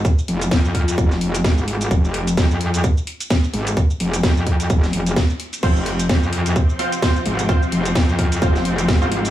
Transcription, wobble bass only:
X:1
M:4/4
L:1/8
Q:"Swing 16ths" 1/4=129
K:Fm
V:1 name="Wobble bass" clef=bass
z F,,, F,,2 F,,,2 A,,,2 | F,,,2 F,,2 z3 A,,, | z F,,, F,,2 F,,, F,,, z2 | F,,,2 F,,2 z3 A,,, |
z F,,, F,,2 F,,,2 A,,,2 |]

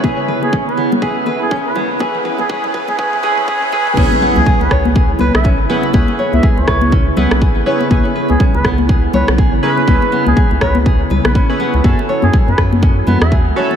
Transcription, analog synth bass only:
X:1
M:4/4
L:1/16
Q:"Swing 16ths" 1/4=122
K:C#m
V:1 name="Analog synth bass" clef=bass
z16 | z16 | C,, z2 C,, z C,, C,,4 C,, B,,,2 G,,, z2 | C,, z2 C,, z C,, C,,4 C,, B,,,2 G,,, z2 |
C,, z2 C,, z C,, C,,4 C,, B,,,2 G,,, z2 | C,, z2 C,, z C,, C,,4 C,, B,,, z3 C,, | F,, z2 F,, z F,, F,,4 F,, E,,2 C,, z2 |]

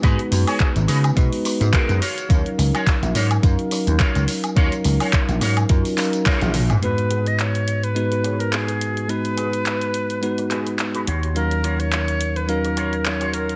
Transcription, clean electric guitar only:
X:1
M:4/4
L:1/16
Q:"Swing 16ths" 1/4=106
K:Abdor
V:1 name="Clean electric guitar"
[GAc] z2 [GAd] z2 [GAc] z4 z [GAB]2 [FGd]2- | [FGd] z2 [FGd] z2 [FGd] z4 z [FGd]2 z2 | [FGd] z2 [FGd] z2 [FGd] z4 z [FGd]2 z2 | z2 [GAc] z6 z [GAd] z2 [GAc]3 |
z2 [GAc] z6 z [GAc] z2 [GAc] [FGd]2- | [FGd] z [FGd] z6 z [FGd] z2 [FGd]3 |]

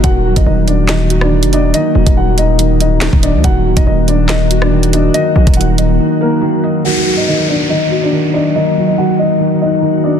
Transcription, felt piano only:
X:1
M:4/4
L:1/8
Q:1/4=141
K:Ebm
V:1 name="Felt piano" clef=bass
E, G, E,2 E, G E, e | E, G, E,2 E, E E, e | E, G, E,2 E, G E, e | E, G, E,2 E, E E, e |
E, G, E,2 E, G E, e | E, G, E,2 E, E E, e |]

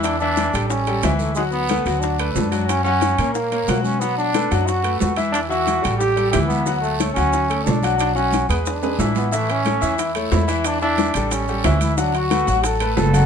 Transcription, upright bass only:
X:1
M:4/4
L:1/8
Q:1/4=181
K:A
V:1 name="Upright bass" clef=bass
E,,3 A,,,3 D,,2- | D,,3 D,,3 F,,2- | F,,3 ^A,,3 B,,2- | B,,3 F,,3 E,,2- |
E,,3 A,,,3 D,,2- | D,,3 D,,3 B,,,2- | B,,,3 E,,3 A,,,2- | A,,,3 E,,3 E,,2- |
E,,3 A,,,3 D,,2- | D,,3 A,,,3 F,,,2 |]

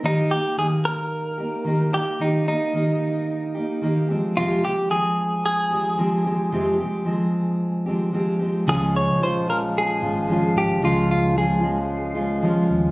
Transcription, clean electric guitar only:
X:1
M:4/4
L:1/8
Q:"Swing 16ths" 1/4=111
K:Dblyd
V:1 name="Clean electric guitar"
E G A B4 G | E E6 z | F G A2 A4- | A6 z2 |
A d c B A3 G | F F A4- A z |]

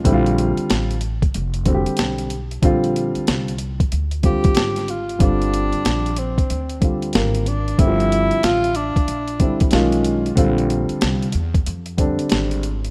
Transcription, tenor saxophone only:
X:1
M:4/4
L:1/8
Q:"Swing 16ths" 1/4=93
K:Bblyd
V:1 name="Tenor saxophone"
z8 | z4 z G2 F | D3 C2 z B, D | E2 F D3 z2 |
z8 |]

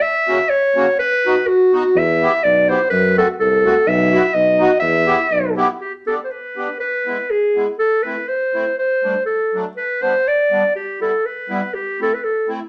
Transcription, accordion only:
X:1
M:2/4
L:1/8
Q:1/4=122
K:Em
V:1 name="Accordion"
z [^C,^A,^CF] z [C,A,CF] | z [B,^DF] z [B,DF] | z [B,EG] z [B,EG] | z [A,CF] z [A,CF] |
z [B,EF] z [B,^DF] | z [B,EG] z [B,EG] | [K:G] z [B,DG] z [B,DG] | z [^G,B,E] z [G,B,E] |
z [A,CE] z [A,CE] | z [G,A,D] z [F,A,D] | z [G,B,D] z [G,B,D] | z [G,B,E] z [G,B,E] |
z [A,CE] z [A,CE] |]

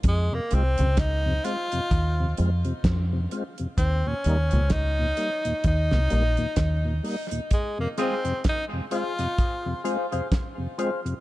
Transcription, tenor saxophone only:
X:1
M:4/4
L:1/16
Q:"Swing 16ths" 1/4=64
K:Fm
V:1 name="Tenor saxophone"
A, B, C2 E2 F4 z6 | C D3 E4 E6 z2 | A, B, C2 E2 F4 z6 |]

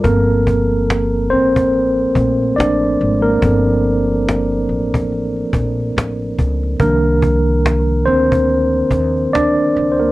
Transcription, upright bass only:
X:1
M:4/4
L:1/8
Q:"Swing 16ths" 1/4=71
K:Gm
V:1 name="Upright bass" clef=bass
G,,,3 A,,,2 B,,, A,,, _A,,, | G,,,3 A,,,2 B,,, A,,, ^C,, | C,,3 D,,2 E,, D,, ^C,, |]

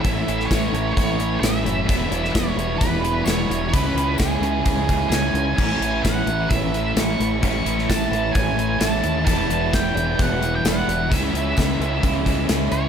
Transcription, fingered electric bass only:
X:1
M:4/4
L:1/8
Q:1/4=130
K:A
V:1 name="Fingered electric bass" clef=bass
A,,, A,,, A,,, A,,, A,,,2 A,,, F,,, | E,,, E,,, E,,, E,,, E,,,2 E,,, E,,, | C,, C,, C,, C,, C,,2 C,, C,, | A,,, A,,, A,,, A,,, A,,,2 A,,, A,,, |
A,,, A,,, A,,, A,,, A,,,2 A,,, ^D,, | E,,, E,,, E,,, E,,, E,,,2 E,,, E,,, | C,, C,, C,, C,, C,,2 C,, C,, |]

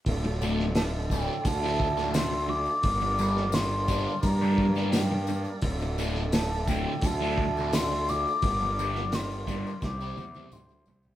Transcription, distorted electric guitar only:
X:1
M:4/4
L:1/16
Q:1/4=86
K:Dm
V:1 name="Distorted electric guitar" clef=bass
z2 [D,,A,,D,] z3 [D,,A,,D,] z2 [D,,A,,D,] z [D,,A,,D,] z4 | z2 [G,,D,G,] z3 [G,,D,G,] z2 [G,,D,G,] z [G,,D,G,] z4 | z2 [D,,A,,D,] z3 [D,,A,,D,] z2 [D,,A,,D,] z [D,,A,,D,] z4 | z2 [G,,D,G,] z3 [G,,D,G,] z2 [C,G,C] z [C,G,C] z4 |]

